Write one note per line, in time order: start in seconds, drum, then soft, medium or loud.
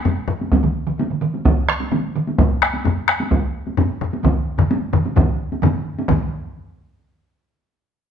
0.05 taiko low-mid medium
0.05 taiko high medium
0.28 taiko low-mid loud
0.41 taiko high medium
0.52 taiko medium
0.52 taiko high medium
0.63 taiko mid medium
0.63 taiko high soft
0.87 taiko mid medium
0.98 taiko mid medium
0.98 taiko high medium
1.10 taiko mid medium
1.21 taiko mid loud
1.34 taiko high soft
1.45 taiko loud
1.45 taiko mid loud
1.45 taiko high medium
1.69 taiko rim medium
1.80 taiko high medium
1.92 taiko mid loud
1.92 taiko high medium
2.16 taiko mid loud
2.27 taiko high medium
2.38 taiko loud
2.38 taiko low-mid medium
2.38 taiko high medium
2.62 taiko rim medium
2.73 taiko high soft
2.85 taiko low-mid loud
2.85 taiko high medium
3.08 taiko rim medium
3.20 taiko high medium
3.31 taiko medium
3.31 taiko high medium
3.67 taiko high soft
3.77 taiko low-mid loud
3.77 taiko high medium
4.01 taiko low-mid loud
4.13 taiko high medium
4.23 taiko medium
4.23 taiko low-mid medium
4.23 taiko mid medium
4.23 taiko high medium
4.58 taiko low-mid loud
4.58 taiko mid medium
4.71 taiko high medium
4.93 taiko low-mid loud
4.93 taiko mid loud
5.06 taiko high medium
5.16 taiko loud
5.16 taiko low-mid medium
5.16 taiko mid loud
5.16 taiko high medium
5.52 taiko high medium
5.63 taiko low-mid loud
5.63 taiko mid loud
5.63 taiko high medium
5.99 taiko high medium
6.09 taiko medium
6.09 taiko low-mid loud
6.09 taiko mid loud
6.09 taiko high medium